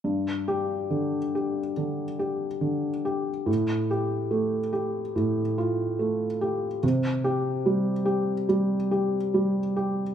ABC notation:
X:1
M:4/4
L:1/8
Q:1/4=70
K:Gm
V:1 name="Felt piano"
z G2 z4 z | z G2 z4 z | z G2 z4 z |]
V:2 name="Felt piano"
G,,2 D, G D, G D, G | A,,2 A, G A,, F A, G | C,2 G, G G, G G, G |]